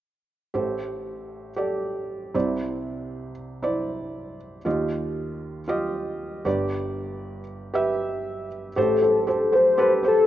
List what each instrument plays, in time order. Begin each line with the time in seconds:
0.54 felt piano A1 A2 G4 A4 C5
1.56 felt piano G4 A4 D5
2.34 felt piano C2 C3 E4 C5 D5
3.62 felt piano E4 C5 D5
4.65 felt piano D#2 D#3 F4 G4 D#5
5.68 felt piano F4 G4 D#5
6.45 felt piano G1 G2 G4 B4 D5
7.74 felt piano G4 B4 E5
8.76 felt piano A1 A2 G4 A4 C5, soft synth lead A4
9.02 felt piano G4 A4 C5
9.27 felt piano G4 A4 C5
9.52 felt piano G4 A4 C5, soft synth lead C5
9.78 felt piano G4 A4 B4, soft synth lead C5
10.03 felt piano G4 A4 C5
10.08 soft synth lead A4